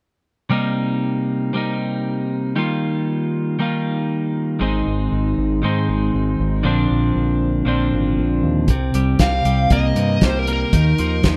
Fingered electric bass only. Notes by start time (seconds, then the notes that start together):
4.61 G#1
4.87 G#1
5.12 G#1
5.38 G#1
5.64 G#2
5.89 G#1
6.14 G#1
6.40 G#1
6.65 A#1
6.91 A#1
7.16 A#1
7.66 A#1
7.92 G#1
8.18 A#1
8.43 D#2
8.68 C2
8.94 C2
9.20 C2
9.45 C2
9.70 C2
9.95 G2
10.22 C2
10.73 D#2
10.99 D#2
11.24 D#2